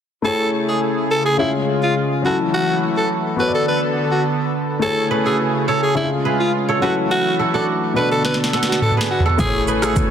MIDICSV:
0, 0, Header, 1, 7, 480
1, 0, Start_track
1, 0, Tempo, 571429
1, 207, Time_signature, 4, 2, 24, 8
1, 8488, End_track
2, 0, Start_track
2, 0, Title_t, "Kora"
2, 0, Program_c, 0, 46
2, 4291, Note_on_c, 0, 71, 72
2, 4298, Note_on_c, 0, 68, 58
2, 4416, Note_on_c, 0, 69, 67
2, 4423, Note_on_c, 0, 66, 51
2, 4466, Note_off_c, 0, 68, 0
2, 4771, Note_on_c, 0, 73, 72
2, 4774, Note_off_c, 0, 69, 0
2, 4777, Note_on_c, 0, 69, 59
2, 5248, Note_off_c, 0, 71, 0
2, 5251, Note_on_c, 0, 71, 73
2, 5257, Note_on_c, 0, 68, 53
2, 5308, Note_off_c, 0, 69, 0
2, 5612, Note_off_c, 0, 73, 0
2, 5616, Note_on_c, 0, 73, 74
2, 5622, Note_on_c, 0, 69, 63
2, 5651, Note_off_c, 0, 66, 0
2, 5672, Note_off_c, 0, 68, 0
2, 5727, Note_off_c, 0, 71, 0
2, 5731, Note_on_c, 0, 71, 68
2, 5738, Note_on_c, 0, 66, 52
2, 6208, Note_off_c, 0, 69, 0
2, 6211, Note_on_c, 0, 69, 67
2, 6214, Note_off_c, 0, 66, 0
2, 6217, Note_on_c, 0, 66, 54
2, 6331, Note_off_c, 0, 66, 0
2, 6335, Note_on_c, 0, 66, 73
2, 6341, Note_on_c, 0, 62, 53
2, 6392, Note_off_c, 0, 73, 0
2, 6687, Note_off_c, 0, 71, 0
2, 6691, Note_on_c, 0, 71, 76
2, 6694, Note_off_c, 0, 66, 0
2, 6697, Note_on_c, 0, 66, 62
2, 7167, Note_off_c, 0, 69, 0
2, 7170, Note_on_c, 0, 69, 82
2, 7174, Note_off_c, 0, 66, 0
2, 7177, Note_on_c, 0, 66, 63
2, 7532, Note_off_c, 0, 71, 0
2, 7536, Note_on_c, 0, 71, 69
2, 7542, Note_on_c, 0, 68, 55
2, 7593, Note_off_c, 0, 69, 0
2, 7752, Note_off_c, 0, 62, 0
2, 7775, Note_on_c, 0, 69, 76
2, 7779, Note_off_c, 0, 66, 0
2, 7782, Note_on_c, 0, 66, 55
2, 7826, Note_off_c, 0, 68, 0
2, 8127, Note_off_c, 0, 71, 0
2, 8131, Note_on_c, 0, 71, 79
2, 8137, Note_on_c, 0, 68, 59
2, 8188, Note_off_c, 0, 69, 0
2, 8256, Note_on_c, 0, 69, 76
2, 8259, Note_off_c, 0, 66, 0
2, 8262, Note_on_c, 0, 66, 58
2, 8306, Note_off_c, 0, 68, 0
2, 8488, Note_off_c, 0, 66, 0
2, 8488, Note_off_c, 0, 69, 0
2, 8488, Note_off_c, 0, 71, 0
2, 8488, End_track
3, 0, Start_track
3, 0, Title_t, "Alto saxophone"
3, 0, Program_c, 1, 65
3, 212, Note_on_c, 1, 69, 92
3, 414, Note_off_c, 1, 69, 0
3, 576, Note_on_c, 1, 68, 65
3, 673, Note_off_c, 1, 68, 0
3, 931, Note_on_c, 1, 69, 77
3, 1036, Note_off_c, 1, 69, 0
3, 1056, Note_on_c, 1, 68, 80
3, 1152, Note_off_c, 1, 68, 0
3, 1171, Note_on_c, 1, 64, 84
3, 1276, Note_off_c, 1, 64, 0
3, 1536, Note_on_c, 1, 65, 72
3, 1633, Note_off_c, 1, 65, 0
3, 1892, Note_on_c, 1, 66, 75
3, 1996, Note_off_c, 1, 66, 0
3, 2133, Note_on_c, 1, 66, 92
3, 2335, Note_off_c, 1, 66, 0
3, 2497, Note_on_c, 1, 69, 65
3, 2593, Note_off_c, 1, 69, 0
3, 2853, Note_on_c, 1, 71, 71
3, 2957, Note_off_c, 1, 71, 0
3, 2978, Note_on_c, 1, 69, 74
3, 3074, Note_off_c, 1, 69, 0
3, 3092, Note_on_c, 1, 71, 76
3, 3196, Note_off_c, 1, 71, 0
3, 3456, Note_on_c, 1, 66, 62
3, 3552, Note_off_c, 1, 66, 0
3, 4052, Note_on_c, 1, 69, 98
3, 4254, Note_off_c, 1, 69, 0
3, 4417, Note_on_c, 1, 68, 69
3, 4513, Note_off_c, 1, 68, 0
3, 4771, Note_on_c, 1, 69, 68
3, 4876, Note_off_c, 1, 69, 0
3, 4897, Note_on_c, 1, 68, 74
3, 4993, Note_off_c, 1, 68, 0
3, 5012, Note_on_c, 1, 64, 76
3, 5116, Note_off_c, 1, 64, 0
3, 5376, Note_on_c, 1, 65, 70
3, 5473, Note_off_c, 1, 65, 0
3, 5731, Note_on_c, 1, 66, 77
3, 5836, Note_off_c, 1, 66, 0
3, 5971, Note_on_c, 1, 66, 107
3, 6174, Note_off_c, 1, 66, 0
3, 6337, Note_on_c, 1, 69, 70
3, 6433, Note_off_c, 1, 69, 0
3, 6692, Note_on_c, 1, 71, 78
3, 6796, Note_off_c, 1, 71, 0
3, 6816, Note_on_c, 1, 69, 75
3, 6912, Note_off_c, 1, 69, 0
3, 6932, Note_on_c, 1, 71, 85
3, 7036, Note_off_c, 1, 71, 0
3, 7297, Note_on_c, 1, 66, 69
3, 7393, Note_off_c, 1, 66, 0
3, 7411, Note_on_c, 1, 69, 80
3, 7516, Note_off_c, 1, 69, 0
3, 7651, Note_on_c, 1, 66, 78
3, 7756, Note_off_c, 1, 66, 0
3, 7892, Note_on_c, 1, 68, 107
3, 8094, Note_off_c, 1, 68, 0
3, 8256, Note_on_c, 1, 68, 76
3, 8353, Note_off_c, 1, 68, 0
3, 8488, End_track
4, 0, Start_track
4, 0, Title_t, "Grand piano"
4, 0, Program_c, 2, 0
4, 186, Note_on_c, 2, 57, 61
4, 200, Note_on_c, 2, 64, 58
4, 215, Note_on_c, 2, 68, 54
4, 229, Note_on_c, 2, 73, 70
4, 339, Control_c, 2, 64, 127
4, 1138, Note_off_c, 2, 57, 0
4, 1145, Note_off_c, 2, 64, 0
4, 1152, Note_off_c, 2, 68, 0
4, 1157, Note_on_c, 2, 49, 62
4, 1159, Note_off_c, 2, 73, 0
4, 1164, Note_on_c, 2, 61, 57
4, 1171, Note_on_c, 2, 65, 56
4, 1178, Note_on_c, 2, 68, 69
4, 1180, Control_c, 2, 64, 0
4, 1317, Control_c, 2, 64, 127
4, 1866, Note_on_c, 2, 54, 64
4, 1867, Note_off_c, 2, 61, 0
4, 1880, Note_on_c, 2, 61, 61
4, 1882, Note_off_c, 2, 49, 0
4, 1889, Note_off_c, 2, 65, 0
4, 1893, Note_off_c, 2, 68, 0
4, 1894, Note_on_c, 2, 64, 59
4, 1898, Control_c, 2, 64, 0
4, 1908, Note_on_c, 2, 69, 70
4, 2047, Control_c, 2, 64, 127
4, 2818, Note_off_c, 2, 54, 0
4, 2825, Note_off_c, 2, 61, 0
4, 2825, Note_on_c, 2, 59, 61
4, 2832, Note_off_c, 2, 64, 0
4, 2839, Note_off_c, 2, 69, 0
4, 2840, Note_on_c, 2, 66, 57
4, 2854, Note_on_c, 2, 69, 57
4, 2859, Control_c, 2, 64, 0
4, 2867, Note_on_c, 2, 73, 53
4, 2914, Note_off_c, 2, 73, 0
4, 2922, Note_on_c, 2, 74, 68
4, 2998, Control_c, 2, 64, 127
4, 4012, Note_off_c, 2, 59, 0
4, 4020, Note_off_c, 2, 66, 0
4, 4026, Note_on_c, 2, 57, 62
4, 4027, Note_off_c, 2, 69, 0
4, 4040, Note_on_c, 2, 64, 55
4, 4054, Note_on_c, 2, 68, 56
4, 4058, Control_c, 2, 64, 0
4, 4062, Note_off_c, 2, 74, 0
4, 4068, Note_on_c, 2, 73, 70
4, 4227, Control_c, 2, 64, 127
4, 4977, Note_off_c, 2, 57, 0
4, 4984, Note_off_c, 2, 64, 0
4, 4992, Note_off_c, 2, 68, 0
4, 4997, Note_on_c, 2, 49, 66
4, 4999, Note_off_c, 2, 73, 0
4, 5004, Note_on_c, 2, 61, 56
4, 5010, Note_on_c, 2, 62, 47
4, 5017, Control_c, 2, 64, 0
4, 5017, Note_on_c, 2, 68, 70
4, 5065, Note_on_c, 2, 65, 56
4, 5066, Note_off_c, 2, 62, 0
4, 5170, Control_c, 2, 64, 127
4, 5706, Note_on_c, 2, 54, 62
4, 5707, Note_off_c, 2, 61, 0
4, 5719, Note_on_c, 2, 61, 56
4, 5722, Note_off_c, 2, 49, 0
4, 5733, Note_off_c, 2, 68, 0
4, 5733, Note_on_c, 2, 64, 58
4, 5738, Control_c, 2, 64, 0
4, 5747, Note_on_c, 2, 69, 71
4, 5756, Note_off_c, 2, 65, 0
4, 5909, Control_c, 2, 64, 127
4, 6657, Note_off_c, 2, 54, 0
4, 6664, Note_off_c, 2, 61, 0
4, 6666, Note_on_c, 2, 47, 64
4, 6671, Note_off_c, 2, 64, 0
4, 6679, Note_off_c, 2, 69, 0
4, 6680, Note_on_c, 2, 59, 57
4, 6694, Note_on_c, 2, 62, 59
4, 6699, Control_c, 2, 64, 0
4, 6708, Note_on_c, 2, 69, 69
4, 6861, Control_c, 2, 64, 127
4, 7853, Note_off_c, 2, 47, 0
4, 7860, Note_off_c, 2, 59, 0
4, 7867, Note_off_c, 2, 62, 0
4, 7874, Note_off_c, 2, 69, 0
4, 7876, Note_on_c, 2, 57, 75
4, 7883, Note_on_c, 2, 64, 67
4, 7890, Note_on_c, 2, 68, 67
4, 7897, Note_on_c, 2, 72, 65
4, 7900, Control_c, 2, 64, 0
4, 7949, Note_off_c, 2, 72, 0
4, 7952, Note_on_c, 2, 73, 83
4, 8051, Control_c, 2, 64, 127
4, 8488, Note_off_c, 2, 57, 0
4, 8488, Note_off_c, 2, 64, 0
4, 8488, Note_off_c, 2, 68, 0
4, 8488, Note_off_c, 2, 73, 0
4, 8488, End_track
5, 0, Start_track
5, 0, Title_t, "Analog synth pad"
5, 0, Program_c, 3, 89
5, 208, Note_on_c, 3, 49, 78
5, 208, Note_on_c, 3, 68, 82
5, 209, Note_on_c, 3, 57, 69
5, 1158, Note_off_c, 3, 68, 0
5, 1159, Note_off_c, 3, 57, 0
5, 1169, Note_on_c, 3, 56, 72
5, 1169, Note_on_c, 3, 65, 84
5, 1871, Note_off_c, 3, 49, 0
5, 1881, Note_off_c, 3, 56, 0
5, 1881, Note_off_c, 3, 65, 0
5, 1886, Note_on_c, 3, 52, 75
5, 1887, Note_on_c, 3, 66, 87
5, 1888, Note_on_c, 3, 57, 71
5, 2837, Note_off_c, 3, 52, 0
5, 2838, Note_off_c, 3, 57, 0
5, 2838, Note_off_c, 3, 66, 0
5, 2847, Note_on_c, 3, 50, 78
5, 2847, Note_on_c, 3, 59, 76
5, 2847, Note_on_c, 3, 69, 86
5, 4035, Note_off_c, 3, 50, 0
5, 4035, Note_off_c, 3, 59, 0
5, 4035, Note_off_c, 3, 69, 0
5, 4047, Note_on_c, 3, 57, 69
5, 4047, Note_on_c, 3, 68, 85
5, 4048, Note_on_c, 3, 49, 82
5, 4998, Note_off_c, 3, 57, 0
5, 4998, Note_off_c, 3, 68, 0
5, 5007, Note_on_c, 3, 56, 68
5, 5007, Note_on_c, 3, 65, 85
5, 5711, Note_off_c, 3, 49, 0
5, 5720, Note_off_c, 3, 56, 0
5, 5720, Note_off_c, 3, 65, 0
5, 5728, Note_on_c, 3, 52, 81
5, 5728, Note_on_c, 3, 57, 69
5, 5728, Note_on_c, 3, 66, 87
5, 6678, Note_off_c, 3, 52, 0
5, 6678, Note_off_c, 3, 57, 0
5, 6678, Note_off_c, 3, 66, 0
5, 6686, Note_on_c, 3, 50, 80
5, 6686, Note_on_c, 3, 69, 91
5, 6687, Note_on_c, 3, 59, 77
5, 7875, Note_off_c, 3, 50, 0
5, 7875, Note_off_c, 3, 59, 0
5, 7875, Note_off_c, 3, 69, 0
5, 7886, Note_on_c, 3, 49, 83
5, 7886, Note_on_c, 3, 57, 75
5, 7886, Note_on_c, 3, 68, 85
5, 8488, Note_off_c, 3, 49, 0
5, 8488, Note_off_c, 3, 57, 0
5, 8488, Note_off_c, 3, 68, 0
5, 8488, End_track
6, 0, Start_track
6, 0, Title_t, "Log drum bass"
6, 0, Program_c, 4, 39
6, 7888, Note_on_c, 4, 33, 104
6, 8462, Note_off_c, 4, 33, 0
6, 8488, End_track
7, 0, Start_track
7, 0, Title_t, "Drums"
7, 6927, Note_on_c, 9, 38, 54
7, 7008, Note_off_c, 9, 38, 0
7, 7008, Note_on_c, 9, 38, 52
7, 7088, Note_off_c, 9, 38, 0
7, 7088, Note_on_c, 9, 38, 64
7, 7168, Note_off_c, 9, 38, 0
7, 7168, Note_on_c, 9, 38, 58
7, 7247, Note_off_c, 9, 38, 0
7, 7247, Note_on_c, 9, 38, 78
7, 7328, Note_off_c, 9, 38, 0
7, 7328, Note_on_c, 9, 38, 68
7, 7407, Note_on_c, 9, 45, 82
7, 7412, Note_off_c, 9, 38, 0
7, 7488, Note_off_c, 9, 45, 0
7, 7488, Note_on_c, 9, 45, 72
7, 7567, Note_on_c, 9, 38, 97
7, 7572, Note_off_c, 9, 45, 0
7, 7651, Note_off_c, 9, 38, 0
7, 7728, Note_on_c, 9, 43, 100
7, 7807, Note_off_c, 9, 43, 0
7, 7807, Note_on_c, 9, 43, 85
7, 7888, Note_on_c, 9, 36, 125
7, 7888, Note_on_c, 9, 82, 72
7, 7889, Note_on_c, 9, 64, 83
7, 7891, Note_off_c, 9, 43, 0
7, 7972, Note_off_c, 9, 36, 0
7, 7972, Note_off_c, 9, 82, 0
7, 7973, Note_off_c, 9, 64, 0
7, 8128, Note_on_c, 9, 82, 45
7, 8212, Note_off_c, 9, 82, 0
7, 8251, Note_on_c, 9, 37, 110
7, 8255, Note_on_c, 9, 82, 69
7, 8259, Note_on_c, 9, 26, 85
7, 8335, Note_off_c, 9, 37, 0
7, 8339, Note_off_c, 9, 82, 0
7, 8343, Note_off_c, 9, 26, 0
7, 8368, Note_on_c, 9, 36, 98
7, 8368, Note_on_c, 9, 82, 75
7, 8371, Note_on_c, 9, 64, 61
7, 8452, Note_off_c, 9, 36, 0
7, 8452, Note_off_c, 9, 82, 0
7, 8455, Note_off_c, 9, 64, 0
7, 8488, End_track
0, 0, End_of_file